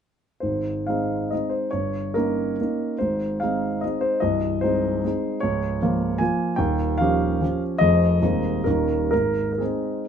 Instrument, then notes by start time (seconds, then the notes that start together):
grand piano
0.40 G#1 G#2 C5
0.87 G#3 C4 D#4 F5
1.31 G#3 C4 D#4 D#5
1.50 C5
1.71 G1 G2 C#5
2.14 A#3 C#4 D#4 A#4
2.60 A#3 C#4 D#4
2.98 G#1 G#2 C5
3.40 G#3 C4 D#4 F5
3.81 G#3 C4 D#4 D#5
4.01 C5
4.20 C1 C2 D#5
4.61 G#3 C4 D#4 C5
5.04 G#3 C4 D#4
5.40 C#1 C#2 C#5
5.82 F3 A#3 F4
6.18 F3 A#3 F4 G#5
6.56 D#1 D#2 G5
6.98 F3 C#4 G4 F5
7.41 F3 C#4 G4
7.78 F1 F2 F3 C4 G#4 D#5
8.22 D#1 D#2 G#3 C4 D#4
8.64 D#1 D#2 G3 C#4 D#4 A#4
9.11 G#1 G#2 A#4
9.52 A#4
9.58 G#3 C4 D#4 G#4